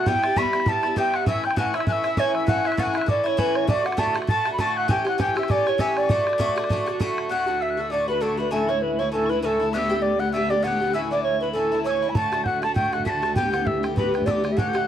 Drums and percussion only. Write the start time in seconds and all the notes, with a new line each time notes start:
0.06 bodhran
0.15 bodhran
0.24 bodhran
0.37 bodhran
0.45 bodhran
0.53 bodhran
0.60 bodhran
0.66 bodhran
0.83 bodhran
0.97 bodhran
1.14 bodhran
1.27 bodhran
1.35 bodhran
1.44 bodhran
1.51 bodhran
1.57 bodhran
1.66 bodhran
1.74 bodhran
1.80 bodhran
1.87 bodhran
2.04 bodhran
2.17 bodhran
2.35 bodhran
2.48 bodhran
2.57 bodhran
2.65 bodhran
2.72 bodhran
2.78 bodhran
2.87 bodhran
2.95 bodhran
3.01 bodhran
3.08 bodhran
3.26 bodhran
3.39 bodhran
3.55 bodhran
3.68 bodhran
3.78 bodhran
3.86 bodhran
3.92 bodhran
3.98 bodhran
4.07 bodhran
4.16 bodhran
4.22 bodhran
4.28 bodhran
4.45 bodhran
4.59 bodhran
4.89 bodhran
4.98 bodhran
5.07 bodhran
5.20 bodhran
5.28 bodhran
5.37 bodhran
5.43 bodhran
5.50 bodhran
5.67 bodhran
5.79 bodhran
5.97 bodhran
6.10 bodhran
6.18 bodhran
6.27 bodhran
6.33 bodhran
6.40 bodhran
6.49 bodhran
6.58 bodhran
6.64 bodhran
6.70 bodhran
6.88 bodhran
7.00 bodhran
7.18 bodhran
12.15 bodhran
12.33 bodhran
12.46 bodhran
12.63 bodhran
12.76 bodhran
12.93 bodhran
13.00 bodhran
13.06 bodhran
13.23 bodhran
13.36 bodhran
13.54 bodhran
13.67 bodhran
13.84 bodhran
13.97 bodhran
14.15 bodhran
14.22 bodhran
14.28 bodhran
14.45 bodhran
14.58 bodhran
14.75 bodhran